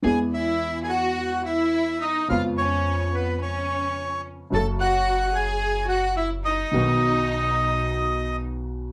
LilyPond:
<<
  \new Staff \with { instrumentName = "Bandoneon" } { \time 4/4 \key e \major \tempo 4 = 108 gis''8 e''8.~ e''32 gis''32 fis''4 e''4 dis''8 | eis''8 cis''4 b'8 cis''4. r8 | a''8 fis''4 gis''4 fis''8 e''8 dis''8~ | dis''2. r4 | }
  \new Staff \with { instrumentName = "Violin section" } { \time 4/4 \key e \major gis'8 e'8.~ e'32 gis'32 fis'4 e'4 dis'8 | eis'8 cis'4 b8 cis'4. r8 | a'8 fis'4 gis'4 fis'8 e'8 dis'8~ | dis'2. r4 | }
  \new Staff \with { instrumentName = "Upright piano" } { \clef bass \time 4/4 \key e \major <e, e gis b gis'>1 | <eis, cis eis gis b eis'>1 | <fis, cis fis a fis'>1 | <b,, b, dis fis b fis'>1 | }
  \new Staff \with { instrumentName = "Upright bass" } { \clef bass \time 4/4 \key e \major e,1 | eis,1 | fis,,1 | b,,1 | }
>>